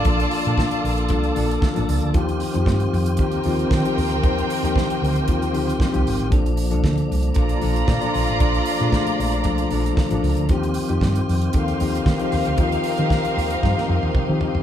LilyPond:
<<
  \new Staff \with { instrumentName = "Violin section" } { \time 4/4 \key ees \lydian \tempo 4 = 115 <f' d'' a''>1 | r2 <c' bes' g''>2~ | <c' bes' g''>1 | r2 <f' d'' bes''>2~ |
<f' d'' bes''>1 | r2 <c' bes' f''>2~ | <c' bes' f''>1 | }
  \new Staff \with { instrumentName = "Reed electric piano" } { \time 4/4 \key ees \lydian << { r4. bes'8 d''4 f''4 | r1 | r1 | r1 |
r1 | r1 | r1 | } \\ { <f bes d' a'>8 r16 <f bes d' a'>4 r16 <f bes d' a'>8 <f bes d' a'>8 r16 <f bes d' a'>8 r16 | <f c' ees' g'>8 r16 <f c' ees' f' g'>4 r16 <f c' ees' g'>8 <f c' ees' f'>8 r16 <f c' ees' g'>8 r16 | <f c' ees' bes'>8 r16 <f c' ees' g'>4 r16 <f c' ees' f'>8 <f c' ees' g'>8 r16 <f c' ees' g'>8 r16 | <f bes d' a'>8 r16 <f bes d' a'>4 r16 <f bes d' a'>8 <f bes d' a'>8 r16 <f bes d' a'>8 r16 |
<f bes d' a'>8 r16 <f a bes d' aes'>4 r16 <f bes d' a'>8 <f bes d' a'>8 r16 <f bes d' a'>8 r16 | <f c' ees' g'>8 r16 <f c' ees' g'>4 r16 <f c' ees' a'>8 <f c' ees' g'>8 r16 <f c' ees' g'>8 r16 | <f c' ees' f'>8 r16 <f c' ees' g'>4 r16 <f c' ees' g'>8 <f c' ees' bes'>8 r16 <f c' ees' g'>8 r16 | } >> }
  \new Staff \with { instrumentName = "Tonewheel organ" } { \time 4/4 \key ees \lydian << { <d' a'>1 | <ees c' g'>1~ | <ees c' g'>1 | <f d'>1~ |
<f d'>1 | <ees c' g'>1~ | <ees c' g'>1 | } \\ { bes1 | f'1~ | f'1 | bes,1~ |
bes,1 | f'1 | ees'1 | } >> }
  \new Staff \with { instrumentName = "Fingered electric bass" } { \clef bass \time 4/4 \key ees \lydian bes,,8 r16 bes,8 r16 bes,,8 c,8 bes,,8 r16 a,,16 des,16 d,16 | ees,8. f,16 g,8 f,8 ees,8 ees,8 ees16 r16 ees,16 d,16 | ees,8 r16 ees,8 r16 d,8 ees,8 d,8 r16 c,16 aes,,16 a,,16 | bes,,8. c,16 d,8 c,8 bes,,8 bes,,8 bes,16 r16 bes,,16 a,,16 |
bes,,8 r16 bes,8 r16 bes,,8 c,8 bes,,8 r16 a,,16 des,16 d,16 | ees,8. f,16 g,8 f,8 ees,8 ees,8 ees16 r16 ees,16 d,16 | ees,8 r16 ees8 r16 ees,8 g,16 r16 f,16 ees,16 r16 ees16 r16 e,16 | }
  \new DrumStaff \with { instrumentName = "Drums" } \drummode { \time 4/4 <hh bd>16 hh16 hho16 hh16 <bd sn>16 hh16 hho16 hh16 <hh bd>16 hh16 hho16 hh16 <bd sn>16 hh16 hho16 hh16 | <hh bd>16 hh16 hho16 hh16 <bd sn>16 hh16 hho16 hh16 <hh bd>16 hh16 hho16 hh16 <bd sn>16 hh16 hho16 hh16 | <hh bd>16 hh16 hho16 hh16 <bd sn>16 hh16 hho16 hh16 <hh bd>16 hh16 hho16 hh16 <bd sn>16 hh16 hho16 hh16 | <hh bd>16 hh16 hho16 hh16 <bd sn>16 hh16 hho16 hh16 <hh bd>16 hh16 hho16 hh16 <bd sn>16 hh16 hho16 hh16 |
<hh bd>16 hh16 hho16 hh16 <bd sn>16 hh16 hho16 hh16 <hh bd>16 hh16 hho16 hh16 <bd sn>16 hh16 hho16 hh16 | <hh bd>16 hh16 hho16 hh16 <bd sn>16 hh16 hho16 hh16 <hh bd>16 hh16 hho16 hh16 <bd sn>16 hh16 hho16 hh16 | <hh bd>16 hh16 hho16 hh16 <bd sn>16 hh16 hho16 hh16 <bd sn>16 sn8 tommh16 <bd toml>8 tomfh16 tomfh16 | }
>>